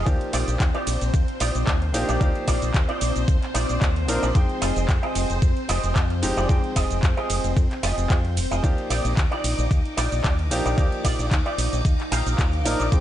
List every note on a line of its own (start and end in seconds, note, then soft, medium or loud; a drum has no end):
0.06 0.15 D#2 loud
0.06 1.91 F3 medium
0.06 1.91 A#3 medium
0.06 8.65 C4 medium
0.06 1.91 D#4 medium
0.06 1.92 G4 loud
0.06 8.65 C5 medium
0.06 1.91 D5 medium
0.06 kick loud
0.06 closed hi-hat medium
0.06 cabasa soft
0.21 closed hi-hat soft
0.33 0.42 A#1 medium
0.33 0.54 D#4 loud
0.33 0.54 F4 loud
0.33 0.54 G4 medium
0.33 0.54 D5 loud
0.33 open hi-hat loud
0.33 ride medium
0.33 cabasa medium
0.48 0.55 A#1 loud
0.48 closed hi-hat medium
0.48 cabasa soft
0.60 0.69 D#2 loud
0.60 kick loud
0.60 clap loud
0.60 closed hi-hat medium
0.60 cabasa soft
0.74 1.07 D#4 medium
0.74 1.07 F4 medium
0.74 1.07 G4 medium
0.74 1.07 D5 medium
0.74 closed hi-hat soft
0.87 0.96 A#1 medium
0.87 open hi-hat loud
0.87 ride medium
0.87 cabasa medium
1.01 1.09 A#1 medium
1.01 closed hi-hat medium
1.01 cabasa soft
1.14 1.23 D#2 medium
1.14 kick loud
1.14 closed hi-hat medium
1.14 cabasa soft
1.28 closed hi-hat soft
1.40 1.49 A#1 medium
1.40 1.74 D#4 loud
1.40 1.74 F4 loud
1.40 1.75 G4 loud
1.40 1.75 D5 loud
1.40 open hi-hat loud
1.40 ride medium
1.40 cabasa medium
1.55 1.63 A#1 medium
1.55 closed hi-hat medium
1.55 cabasa soft
1.67 1.94 D#2 loud
1.67 kick loud
1.67 clap loud
1.67 closed hi-hat medium
1.67 cabasa soft
1.82 closed hi-hat soft
1.94 2.03 A#1 medium
1.94 2.18 F3 loud
1.94 2.18 A#3 medium
1.94 2.18 D4 medium
1.94 2.18 D#4 medium
1.94 2.18 G4 loud
1.94 open hi-hat loud
1.94 ride medium
1.94 cabasa medium
2.08 2.16 A#1 medium
2.08 2.28 D#4 medium
2.08 2.28 F4 medium
2.08 2.28 G4 medium
2.08 2.28 D5 loud
2.08 closed hi-hat medium
2.08 cabasa soft
2.20 2.30 D#2 loud
2.20 4.05 F3 loud
2.20 4.05 A#3 medium
2.20 4.05 D#4 medium
2.20 4.06 G4 loud
2.20 4.05 D5 medium
2.20 kick loud
2.20 closed hi-hat medium
2.20 cabasa soft
2.35 closed hi-hat soft
2.47 2.57 A#1 medium
2.47 2.68 D#4 loud
2.47 2.68 F4 loud
2.47 2.68 G4 medium
2.47 2.68 D5 loud
2.47 kick medium
2.47 open hi-hat loud
2.47 ride medium
2.47 cabasa medium
2.62 2.70 A#1 loud
2.62 closed hi-hat medium
2.62 cabasa soft
2.74 2.83 D#2 loud
2.74 kick loud
2.74 clap loud
2.74 closed hi-hat medium
2.74 cabasa soft
2.88 3.22 D#4 medium
2.88 3.22 F4 medium
2.88 3.22 G4 medium
2.88 3.22 D5 loud
2.88 closed hi-hat soft
3.01 3.10 A#1 medium
3.01 open hi-hat loud
3.01 ride medium
3.01 cabasa medium
3.16 3.23 A#1 medium
3.16 closed hi-hat medium
3.16 cabasa soft
3.28 3.37 D#2 medium
3.28 kick loud
3.28 closed hi-hat medium
3.28 cabasa soft
3.42 clap soft
3.42 closed hi-hat soft
3.54 3.64 A#1 medium
3.54 3.89 D#4 loud
3.54 3.89 F4 medium
3.54 3.89 G4 loud
3.54 3.89 D5 loud
3.54 open hi-hat loud
3.54 ride medium
3.54 cabasa medium
3.69 3.77 A#1 medium
3.69 closed hi-hat medium
3.69 cabasa soft
3.82 4.09 D#2 loud
3.82 kick loud
3.82 clap loud
3.82 closed hi-hat medium
3.82 cabasa soft
3.96 closed hi-hat soft
4.08 4.17 A#1 medium
4.08 4.25 F3 medium
4.08 4.25 A#3 medium
4.08 4.25 D4 medium
4.08 4.25 D#4 medium
4.08 4.25 A#4 loud
4.08 open hi-hat loud
4.08 ride medium
4.08 cabasa medium
4.22 4.31 A#1 medium
4.22 4.35 D#4 medium
4.22 4.35 F4 medium
4.22 4.35 G4 medium
4.22 4.35 D5 medium
4.22 closed hi-hat medium
4.22 cabasa soft
4.34 4.44 F2 loud
4.34 6.19 F3 medium
4.34 6.19 G#3 medium
4.34 6.20 C4 medium
4.34 6.20 D#4 medium
4.34 6.20 G5 loud
4.34 kick loud
4.34 closed hi-hat medium
4.34 cabasa soft
4.50 closed hi-hat soft
4.61 4.71 F1 medium
4.61 4.82 F4 loud
4.61 4.82 G4 loud
4.61 4.82 G#4 loud
4.61 4.82 D#5 loud
4.61 open hi-hat loud
4.61 ride medium
4.61 cabasa medium
4.76 4.84 F1 loud
4.76 closed hi-hat medium
4.76 cabasa soft
4.89 4.98 F2 loud
4.89 kick loud
4.89 clap loud
4.89 closed hi-hat medium
4.89 cabasa soft
5.03 5.36 F4 medium
5.03 5.36 G4 medium
5.03 5.36 G#4 medium
5.03 5.36 D#5 loud
5.03 closed hi-hat soft
5.15 5.24 F1 medium
5.15 open hi-hat loud
5.15 ride medium
5.15 cabasa medium
5.30 5.38 F1 medium
5.30 closed hi-hat soft
5.30 cabasa soft
5.42 5.51 F2 medium
5.42 kick loud
5.42 closed hi-hat medium
5.42 cabasa soft
5.57 closed hi-hat soft
5.69 5.78 F1 medium
5.69 6.03 F4 medium
5.69 6.03 G4 loud
5.69 6.03 G#4 medium
5.69 6.03 D#5 loud
5.69 open hi-hat loud
5.69 ride medium
5.69 cabasa medium
5.83 5.91 F1 medium
5.83 closed hi-hat medium
5.83 cabasa soft
5.96 6.24 F2 loud
5.96 kick loud
5.96 clap loud
5.96 closed hi-hat medium
5.96 cabasa soft
6.10 closed hi-hat soft
6.22 6.32 F1 medium
6.22 6.46 F3 medium
6.22 6.46 G#3 medium
6.22 6.46 C4 medium
6.22 6.46 D#4 medium
6.22 6.47 G4 loud
6.22 open hi-hat loud
6.22 ride medium
6.22 cabasa medium
6.37 6.45 F1 medium
6.37 6.57 F4 medium
6.37 6.57 G4 medium
6.37 6.57 G#4 medium
6.37 6.57 D5 loud
6.37 closed hi-hat medium
6.37 cabasa soft
6.48 6.58 F2 loud
6.48 8.33 F3 loud
6.48 8.33 G#3 medium
6.48 8.34 C4 medium
6.48 8.34 D#4 medium
6.48 8.34 G5 loud
6.48 kick loud
6.48 closed hi-hat medium
6.48 cabasa soft
6.64 closed hi-hat soft
6.76 6.85 F1 medium
6.76 6.97 F4 medium
6.76 6.97 G4 loud
6.76 6.97 G#4 loud
6.76 6.97 D#5 loud
6.76 kick medium
6.76 open hi-hat loud
6.76 ride medium
6.76 cabasa medium
6.91 6.98 F1 loud
6.91 closed hi-hat soft
6.91 cabasa soft
7.03 7.12 F2 loud
7.03 kick loud
7.03 clap loud
7.03 closed hi-hat medium
7.03 cabasa soft
7.17 7.50 F4 medium
7.17 7.50 G4 medium
7.17 7.50 G#4 medium
7.17 7.50 D#5 loud
7.17 closed hi-hat soft
7.30 7.39 F1 medium
7.30 open hi-hat loud
7.30 ride medium
7.30 cabasa medium
7.44 7.52 F1 medium
7.44 closed hi-hat medium
7.44 cabasa soft
7.57 7.65 F2 medium
7.57 kick loud
7.57 closed hi-hat soft
7.57 cabasa soft
7.71 clap soft
7.71 closed hi-hat soft
7.83 7.92 F1 medium
7.83 8.17 F4 loud
7.83 8.17 G4 loud
7.83 8.17 G#4 loud
7.83 8.17 D#5 loud
7.83 open hi-hat loud
7.83 ride medium
7.83 cabasa medium
7.97 8.05 F1 medium
7.97 closed hi-hat medium
7.97 cabasa soft
8.10 8.38 F2 loud
8.10 kick loud
8.10 clap loud
8.10 closed hi-hat medium
8.10 cabasa soft
8.25 closed hi-hat soft
8.37 8.46 F1 medium
8.37 open hi-hat loud
8.37 ride medium
8.37 cabasa medium
8.51 8.59 F1 medium
8.51 8.64 F4 medium
8.51 8.64 G4 medium
8.51 8.64 G#4 medium
8.51 8.64 D#5 medium
8.51 closed hi-hat soft
8.51 cabasa soft
8.63 8.73 D#2 loud
8.63 10.48 F3 medium
8.63 10.48 A#3 medium
8.63 13.00 D#4 medium
8.63 10.48 D#4 medium
8.63 10.49 G4 loud
8.63 10.48 D5 medium
8.63 13.00 D6 medium
8.63 kick loud
8.63 closed hi-hat medium
8.63 cabasa soft
8.78 closed hi-hat soft
8.90 8.99 A#1 medium
8.90 9.11 D#4 loud
8.90 9.11 F4 medium
8.90 9.11 G4 medium
8.90 9.11 D5 loud
8.90 open hi-hat loud
8.90 ride medium
8.90 cabasa medium
9.05 9.12 A#1 loud
9.05 closed hi-hat medium
9.05 cabasa soft
9.17 9.26 D#2 loud
9.17 kick loud
9.17 clap loud
9.17 closed hi-hat medium
9.17 cabasa soft
9.31 9.65 D#4 medium
9.31 9.65 F4 medium
9.31 9.65 G4 medium
9.31 9.65 D5 loud
9.31 closed hi-hat soft
9.44 9.53 A#1 medium
9.44 open hi-hat loud
9.44 ride medium
9.44 cabasa medium
9.58 9.66 A#1 medium
9.58 closed hi-hat soft
9.58 cabasa soft
9.71 9.80 D#2 medium
9.71 kick loud
9.71 closed hi-hat soft
9.71 cabasa soft
9.85 closed hi-hat soft
9.97 10.07 A#1 medium
9.97 10.31 D#4 medium
9.97 10.32 F4 medium
9.97 10.32 G4 loud
9.97 10.32 D5 loud
9.97 open hi-hat loud
9.97 ride medium
9.97 cabasa medium
10.12 10.20 A#1 medium
10.12 closed hi-hat soft
10.12 cabasa soft
10.24 10.51 D#2 loud
10.24 kick loud
10.24 clap loud
10.24 closed hi-hat medium
10.24 cabasa soft
10.39 closed hi-hat soft
10.51 10.60 A#1 medium
10.51 10.75 F3 loud
10.51 10.75 A#3 medium
10.51 10.75 D4 medium
10.51 10.75 D#4 medium
10.51 10.75 G4 loud
10.51 open hi-hat loud
10.51 ride medium
10.51 cabasa medium
10.65 10.73 A#1 medium
10.65 10.85 D#4 medium
10.65 10.85 F4 medium
10.65 10.85 G4 medium
10.65 10.85 D5 medium
10.65 closed hi-hat soft
10.65 cabasa soft
10.77 10.87 D#2 loud
10.77 12.62 F3 loud
10.77 12.62 A#3 medium
10.77 12.63 D#4 medium
10.77 12.63 G4 loud
10.77 12.62 D5 medium
10.77 kick loud
10.77 closed hi-hat medium
10.77 cabasa soft
10.92 closed hi-hat soft
11.04 11.14 A#1 medium
11.04 11.25 D#4 medium
11.04 11.25 F4 loud
11.04 11.25 G4 loud
11.04 11.25 D5 loud
11.04 kick medium
11.04 open hi-hat loud
11.04 ride medium
11.04 cabasa medium
11.19 11.27 A#1 loud
11.19 closed hi-hat medium
11.19 cabasa soft
11.31 11.40 D#2 loud
11.31 kick loud
11.31 clap loud
11.31 closed hi-hat medium
11.31 cabasa soft
11.46 11.79 D#4 medium
11.46 11.79 F4 medium
11.46 11.79 G4 medium
11.46 11.79 D5 loud
11.46 closed hi-hat soft
11.58 11.67 A#1 medium
11.58 open hi-hat loud
11.58 ride medium
11.58 cabasa medium
11.73 11.80 A#1 medium
11.73 closed hi-hat medium
11.73 cabasa soft
11.85 11.94 D#2 medium
11.85 kick loud
11.85 closed hi-hat medium
11.85 cabasa soft
12.00 clap soft
12.00 closed hi-hat soft
12.11 12.21 A#1 medium
12.11 12.46 D#4 loud
12.11 12.46 F4 loud
12.11 12.46 G4 loud
12.11 12.38 F5 loud
12.11 12.37 G5 medium
12.11 open hi-hat loud
12.11 ride medium
12.11 cabasa medium
12.26 12.34 A#1 medium
12.26 closed hi-hat soft
12.26 cabasa soft
12.39 12.65 D#2 loud
12.39 12.64 F5 medium
12.39 kick loud
12.39 clap loud
12.39 closed hi-hat medium
12.39 cabasa soft
12.53 closed hi-hat soft
12.65 12.74 A#1 medium
12.65 12.82 F3 loud
12.65 12.82 A#3 medium
12.65 12.82 D4 medium
12.65 12.82 D#4 medium
12.65 12.82 A#4 loud
12.65 12.79 D#5 medium
12.65 open hi-hat loud
12.65 ride medium
12.65 cabasa medium
12.80 12.88 A#1 medium
12.80 12.92 D#4 medium
12.80 12.92 F4 medium
12.80 12.92 G4 medium
12.80 12.92 D5 medium
12.80 closed hi-hat medium
12.80 cabasa soft
12.91 13.00 F2 loud
12.91 13.00 F3 medium
12.91 13.00 G#3 medium
12.91 13.00 C4 medium
12.91 13.00 D#4 medium
12.91 13.00 G5 loud
12.91 kick loud
12.91 closed hi-hat medium
12.91 cabasa soft